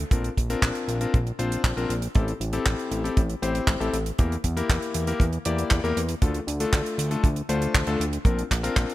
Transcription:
0.11 A#1 C4 D4 F4 A#4, kick, closed hi-hat
0.24 closed hi-hat
0.37 A#1, kick, closed hi-hat
0.50 C4 D4 F4 A#4, closed hi-hat
0.62 A#1, kick, clap, closed hi-hat
0.75 closed hi-hat
0.88 A#1, closed hi-hat
1.01 C4 D4 F4 A#4, closed hi-hat
1.14 A#1, kick, closed hi-hat
1.27 closed hi-hat
1.39 A#1 C4 D4 F4 C5, closed hi-hat
1.52 closed hi-hat
1.64 A#1, kick, clap, closed hi-hat
1.77 A#1 C4 D4 F4 A#4, closed hi-hat
1.90 A#1, closed hi-hat
2.02 closed hi-hat
2.15 A1 C4 E4 G4 A4, kick, closed hi-hat
2.28 closed hi-hat
2.40 A1, closed hi-hat
2.53 C4 E4 G4 A4, closed hi-hat
2.66 A1, kick, clap, closed hi-hat
2.79 closed hi-hat
2.91 A1, closed hi-hat
3.04 C4 E4 G4 A4, closed hi-hat
3.17 A1, kick, closed hi-hat
3.30 closed hi-hat
3.42 A1 C4 E4 G4 C5, closed hi-hat
3.55 closed hi-hat
3.67 A1, kick, clap, closed hi-hat
3.80 A1 C4 E4 G4 A4, closed hi-hat
3.93 A1, closed hi-hat
4.06 closed hi-hat
4.18 E2 A#3 E4 G4 A#4, kick, closed hi-hat
4.32 closed hi-hat
4.44 E2, kick, closed hi-hat
4.57 A#3 E4 G4 A#4, closed hi-hat
4.69 E2, kick, clap, closed hi-hat
4.82 closed hi-hat
4.94 E2, closed hi-hat
5.07 A#3 E4 G4 A#4, closed hi-hat
5.20 E2, kick, closed hi-hat
5.33 closed hi-hat
5.45 E2 A#3 E4 G4 D5, closed hi-hat
5.58 closed hi-hat
5.71 E2, kick, clap, closed hi-hat
5.84 E2 A#3 E4 G4 A#4, closed hi-hat
5.97 E2, closed hi-hat
6.09 closed hi-hat
6.22 D2 A3 D4 F4 A4, kick, closed hi-hat
6.34 closed hi-hat
6.47 D2, closed hi-hat
6.60 A3 D4 F4 A4, closed hi-hat
6.73 D2, kick, clap, closed hi-hat
6.86 closed hi-hat
6.98 D2, closed hi-hat
7.11 A3 D4 F4 A4, closed hi-hat
7.24 D2, kick, closed hi-hat
7.36 closed hi-hat
7.49 D2 A3 D4 F4 C5, closed hi-hat
7.62 closed hi-hat
7.74 D2, kick, clap, closed hi-hat
7.87 D2 A3 D4 F4 A4, closed hi-hat
8.00 D2, closed hi-hat
8.13 closed hi-hat
8.25 A#1 C4 D4 F4 A#4, kick, closed hi-hat
8.39 closed hi-hat
8.51 A#1, kick, clap, closed hi-hat
8.63 C4 D4 F4 A#4, closed hi-hat
8.76 A#1, kick, clap, closed hi-hat
8.90 closed hi-hat

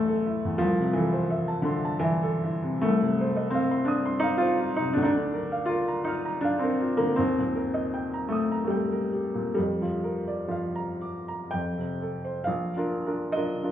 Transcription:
Already playing: A1 E2 E3 A3 A4 C5 E5 A5 C6
0.08 A4
0.26 E4
0.45 E2
0.58 C2 F3
0.79 C3
0.93 E3 A4
1.13 C5
1.30 E5
1.48 A5
1.62 D3 C6
1.85 A5
1.99 E3 E5
2.23 A4
2.44 E4
2.63 C3
2.81 C2 A3
3.02 C3
3.21 C5
3.37 D#5
3.50 C4 F5
3.71 C6
3.85 D4 D#6
4.05 C6
4.20 D#4 F5
4.37 F4 C5
4.61 F4
4.76 C3 D#4
4.93 D2 D4
5.02 D4 D#4
5.15 D3
5.34 A#4
5.52 F5
5.65 F4 A#4
5.88 A#5
6.04 D#4 F6
6.25 A#5
6.41 D4 F5
6.59 C4 A#4
6.82 F4
6.97 D3 A#3
7.16 D#2 C4
7.38 A#2
7.55 A#4
7.74 D#5
7.94 G5
8.14 A#5
8.29 A3 D#6
8.52 A#5
8.64 G3 A3
8.70 G5
8.92 A#4
9.13 G4
9.34 A#2
9.54 F2 G3
9.82 F3
10.04 A#4
10.27 D5
10.48 F3 F5
10.76 A#5
11.01 D6
11.28 A#5
11.51 F2 G5
11.78 C3
12.02 A4
12.24 C5
12.44 A#1 F5
12.76 D4 F4 A#4
13.06 D4 F4 A#4
13.32 D4 F4 A#4 D#5
13.63 D4 F4 A#4

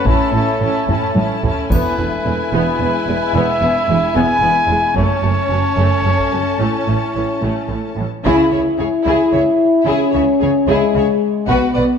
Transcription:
Already playing: A3 C#4
0.06 A1 A2 C#4 E4 A4 A5, taiko
0.32 A1 A2 C#4 E4 A5
0.60 A1 A2 C#4 E4 A5
0.87 A1 A2 C#4 E4 A5, taiko low-mid
1.15 A1 A2 C#4 E4 A5, taiko high
1.42 A1 A2 C#4 E4, taiko low
1.47 A5
1.70 E1 E2 B3 E4 B4 G#5, taiko, triangle
1.98 E1 E2 B3
2.25 E1 E2 G#3
2.52 E1 E2 G#3 B3 B4
2.80 E1 E2 B3
3.07 E1 E2 G#3
3.33 E1 E2 B3 E5
3.61 E1 E2 B3
3.88 E1 E2 G#3
4.15 E1 E2 B3 G#5
4.42 E1 E2 B3
4.67 E1 E2 G#3
4.95 F#1 F#2 A3 C#4 C#5 A5, taiko
5.22 F#1 F#2 A3
5.49 F#1 F#2 F#3
5.76 F#1 F#2 A3
6.04 F#1 F#2 A3
6.19 taiko
6.32 F#1 F#2 F#3
6.59 A1 A2 A3 E4 C#5
6.87 A1 A2 A3
7.15 A1 A2 E3
7.42 A1 A2 A3
7.68 A1 A2 A3
7.96 A1 A2
8.00 E3
8.24 C#2 C#3 E4 G#4, taiko
8.52 C#2 C#3 G#4 C#5 E5
8.78 C#2 C#3 G#4 C#5
9.04 C#2 C#3 E4 G#4
9.32 C#2 C#3 G#4 C#5 E5
9.86 C#2 C#3 C#4 E4 G#4
10.12 C#2 C#3 G#4 C#5 E5
10.40 C#2 C#3 G#4 C#5
10.68 C#2 C#3 G#3 E4 G#4
10.94 C#2 C#3 G#4 C#5 E5
11.48 B1 B2 B3 F#4 B4, taiko
11.74 B1 B2 B4 D5 F#5

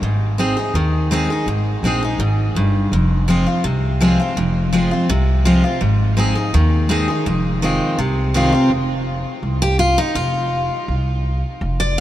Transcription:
0.02 G#1 G#2
0.38 G#3 C4 D#4 G#4
0.57 D#4 G#4
0.74 D#2 D#3
1.11 G#3 C4 D#4 G#4
1.30 D#4 G#4
1.46 G#1 G#2
1.83 A#1 G#3 C4 D#4 G#4
2.03 D#4 G#4
2.18 G#1 G#2
2.55 G1 G2
2.92 F1 F2
3.28 F3 G#3 C4 F4
3.47 C4 F4
3.64 C2 C3
4.01 F3 G#3 C4 F4
4.20 C4 F4
4.37 F1 F2
4.73 F3 G#3 C4 F4
4.91 C4 F4
5.09 C2 C3
5.45 F3 G#3 C4 F4
5.63 C4 F4
5.81 G#1 G#2
6.17 G#3 C4 D#4 G#4
6.35 D#4 G#4
6.54 D#2 D#3
6.89 G#3 C4 D#4 G#4
7.08 D#4 G#4
7.26 F1 F2
7.62 D#3 G#3 C4 F4
7.98 C2 C3
8.34 D#3 G#3 C4 F4
8.52 C4 F4
8.70 F1
9.43 C2
9.62 G4
9.79 F4
9.98 D#4
10.15 F1 F4
10.88 C2
11.61 F1
11.80 D5

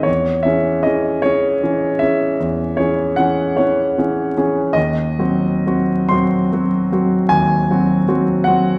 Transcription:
Already playing: D#3 C4 G#4 D#5
0.03 E2 C#5
0.43 E3 C#4 G#4 E5
0.83 E3 C#4 G#4 D#5
1.22 E3 C#4 G#4 C#5
1.63 E3 C#4 G#4
1.99 E3 C#4 G#4 E5
2.40 E2
2.77 E3 C#4 G#4 C#5
3.16 E3 C#4 G#4 F#5
3.57 E3 C#4 G#4 C#5
3.98 E3 C#4 G#4
4.37 E3 C#4 G#4
4.73 D#2 D#5
5.19 F#3 C4 F#4
5.67 F#3 C4 F#4
6.09 F#3 C4 F#4 C6
6.53 F#3 C4 F#4
6.92 F#3 C4 F#4
7.29 D#2 G#5
7.70 F#3 C4 F#4
8.08 F#3 C4 F#4
8.44 F#3 C4 F#4 F#5

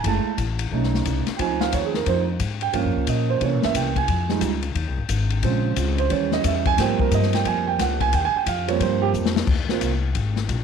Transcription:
0.04 F#1 G#3 A3 E4 A5, kick, ride
0.37 A1, kick, hi-hat pedal, ride
0.59 ride
0.71 B1 A3 C#4 D#4, kick
0.83 snare
0.95 snare
1.05 C2, kick, hi-hat pedal, ride
1.27 snare, ride
1.36 C#2 F3 C4 D#4 G5, kick, ride
1.41 G#5
1.61 F5, snare
1.72 D#2 C#5, kick, hi-hat pedal, ride
1.85 G#4
1.94 A#4, snare
2.06 F2 F3 C4 D#4 C5, kick, ride
2.40 G#2, kick, hi-hat pedal, ride
2.61 G5, ride
2.73 G2 F3 A#3 C#4 F5, kick, ride
2.84 F2
2.95 C#2
3.07 A#2 D#5, kick, hi-hat pedal, ride
3.30 C5
3.40 C3 E3 A#3 C#4 C#5, kick, ride
3.53 A#2
3.62 G2 E5, snare
3.74 C2 G5, kick, hi-hat pedal, ride
3.96 G#5, kick, ride
4.08 F2, kick, ride
4.29 G3 G#3 D#4, snare
4.41 C#2, kick, hi-hat pedal, ride
4.62 ride
4.75 D#2, kick, ride
4.87 C2
4.97 G#1
5.09 G#1, kick, hi-hat pedal, ride
5.30 ride
5.43 A#1 C#3 G#3 C4, kick, ride
5.76 C#2, kick, hi-hat pedal, ride
5.98 C5, ride
6.10 D#2 E3 G3 C#4 C#5, kick, ride
6.32 D#5, snare
6.44 E2 E5, kick, hi-hat pedal, ride
6.65 G#5, kick, ride
6.78 G#2 F3 G3 A#3 C4 G5, kick, snare, ride
6.99 A#4, muted upright bass stroke, kick
7.11 G2 D#5, kick, hi-hat pedal, ride
7.23 snare
7.33 G5, snare, ride
7.45 F2 G#5, kick, ride
7.67 G5
7.79 C#2 F#5, kick, snare, hi-hat pedal, ride
8.01 G#5, kick, ride
8.13 D#2 G5, kick, ride
8.25 G#5
8.34 G5, muted upright bass stroke
8.46 F2 F5, kick, hi-hat pedal, ride
8.68 F3 G3 A#3 C4 C#5, ride
8.80 G2 C5, kick, ride
9.02 G4
9.13 F2, hi-hat pedal
9.26 snare
9.36 snare
9.47 D#2, kick, crash
9.69 A#3 C4 F4, snare
9.80 C2, kick, hi-hat pedal, ride
10.15 G#1, kick, ride
10.36 snare
10.49 A#1, kick, hi-hat pedal, ride

